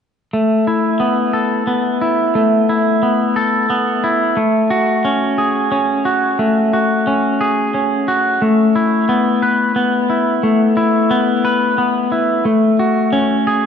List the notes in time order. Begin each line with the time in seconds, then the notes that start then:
0.33 A3
0.67 E4
1.00 B3
1.33 A4
1.67 B3
2.01 E4
2.35 A3
2.69 E4
3.03 B3
3.36 A4
3.70 B3
4.04 E4
4.37 A3
4.70 F#4
5.05 C#4
5.38 G#4
5.72 C#4
6.05 F#4
6.39 A3
6.73 F#4
7.07 C#4
7.41 G#4
7.74 C#4
8.08 F#4
8.42 A3
8.76 E4
9.09 B3
9.43 B4
9.76 B3
10.10 E4
10.43 A3
10.77 E4
11.11 B3
11.45 B4
11.78 B3
12.12 E4
12.45 A3
12.79 F#4
13.13 C#4
13.47 G#4